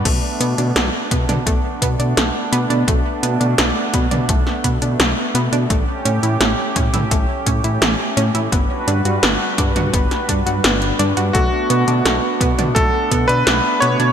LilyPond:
<<
  \new Staff \with { instrumentName = "Electric grand piano" } { \time 4/4 \key b \minor \tempo 4 = 85 r1 | r1 | r1 | r1 |
fis'2 a'8. b'8. cis''8 | }
  \new Staff \with { instrumentName = "Analog synth pad" } { \time 4/4 \key b \minor << { <b d'>1~ | <b d'>1 | <cis' g'>1 | <g fis' b'>1 |
b1 | } \\ { a1~ | a1~ | a1 | d'1 |
a1 | } >> }
  \new Staff \with { instrumentName = "Synth arpeggio sound" } { \time 4/4 \key b \minor a16 r16 b16 d'16 a16 r16 b16 d'16 a16 r16 b16 d'16 a16 r16 b16 d'16 | a16 r16 b16 d'16 a16 r16 b16 d'16 a16 r16 b16 d'16 a16 r16 b16 d'16 | a16 r16 cis'16 e'16 a16 r16 cis'16 e'16 a16 r16 cis'16 e'16 a16 r16 cis'16 e'16 | b16 r16 d'16 fis'16 b16 r16 d'16 fis'16 b16 r16 d'16 fis'16 b16 r16 d'16 fis'16 |
a16 r16 b16 d'16 a16 r16 b16 d'16 a16 r16 b16 d'16 a16 r16 b16 d'16 | }
  \new Staff \with { instrumentName = "Detuned saw bass" } { \clef bass \time 4/4 \key b \minor b,,16 r16 b,16 b,16 b,,16 r16 b,16 b,16 b,,16 r16 b,16 b,16 b,,16 r16 b,16 b,16 | b,,16 r16 b,16 b,16 b,,16 r16 b,16 b,16 b,,16 r16 b,16 b,16 b,,16 r16 b,16 b,16 | a,,16 r16 a,16 a,16 a,,16 r16 a,16 a,16 a,,16 r16 a,16 a,16 a,,16 r16 a,16 a,16 | g,,16 r16 g,16 g,16 g,,16 r16 g,16 g,16 g,,16 r16 g,16 g,16 g,,8 g,16 g,16 |
b,,16 r16 b,16 b,16 b,,16 r16 b,16 b,16 b,,16 r16 b,16 b,16 b,,16 r16 b,16 b,16 | }
  \new DrumStaff \with { instrumentName = "Drums" } \drummode { \time 4/4 <cymc hh bd>8 hh16 hh16 <hh sn>8 <hh bd>16 <hh toml>16 <hh bd>8 <hh bd>16 hh16 <hh sn>8 hh16 hh16 | <hh bd>8 hh16 hh16 <hh sn>8 <hh bd>16 <hh toml>16 <hh bd>16 sn16 <hh bd>16 hh16 <hh sn>8 hh16 hh16 | <hh bd>8 hh16 hh16 <hh sn>8 <hh bd>16 <hh toml>16 <hh bd>8 <hh bd>16 hh16 <hh sn>8 hh16 hh16 | <hh bd>8 hh16 hh16 <hh sn>8 <hh bd>16 <hh toml>16 <hh bd>16 <hh sn>16 <hh bd>16 hh16 <hh sn>16 hh16 hh16 hh16 |
<hh bd>8 hh16 hh16 <hh sn>8 <hh bd>16 <hh toml>16 <hh bd>8 <hh bd>16 hh16 <hh sn>8 hh16 hh16 | }
>>